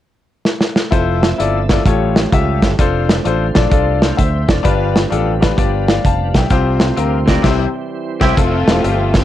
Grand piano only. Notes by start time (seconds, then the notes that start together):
0.91 E4 F4 A4 C5
1.38 E4 F4 A4 D5
1.70 E4 F4 A4 D5
1.86 A2 F4 G4 A4 C#5
2.32 F4 G4 A4 E5
2.79 D4 F4 A4 C5
3.25 D4 F4 A4 C5
3.55 D4 F4 A4 D5
3.70 D4 F4 A4 D5
4.02 A4 C5
4.17 C5 E5
4.48 D5
4.63 G2 D4 F4 G4 B4
5.10 D4 F4 G4 A4
5.41 D4 F4 G4 B4
5.57 D4 F4 G4 D5
5.88 D5 F5
6.06 F5 A5
6.34 E5 G5
6.50 C3 C4 F4 G4 C5
6.97 C4 F4 G4 A#4
7.26 C4 F4 G4 D5
7.42 C3 C4 E4 G4 C5
8.20 C4 E4 G4 C5
8.36 C4 E4 F4 A4
8.67 C4 E4 F4 G4
8.83 C4 F4 G4 E5